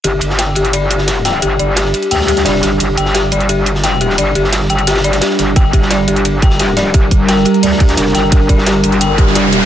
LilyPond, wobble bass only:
\new Staff \with { instrumentName = "Wobble bass" } { \clef bass \time 4/4 \key g \minor \tempo 4 = 174 g,,8 g,,4 g,,2~ g,,8 | g,,8 g,,4 r8 d,4 f,,8 g,,8 | g,,8 g,,4 g,,2~ g,,8 | g,,8 g,,4 g,,4. r8 g,,8 |
g,,8 g,,4 g,,2~ g,,8 | g,,8 g,,4 r8 d,4 f,,8 g,,8 | g,,8 g,,4 g,,2~ g,,8 | }